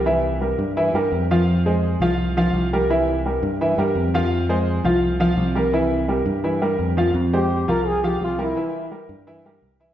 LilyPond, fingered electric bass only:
\new Staff \with { instrumentName = "Fingered electric bass" } { \clef bass \time 4/4 \key c \phrygian \tempo 4 = 169 c,4. g,4 g,8 f,4~ | f,4. c,4. c,4~ | c,4. g,4 g,8 f,4~ | f,4. c,4. c,4~ |
c,4. g,4. f,4 | \key f \minor f,4. c,4. c,4 | r4. g,4. c,4 | }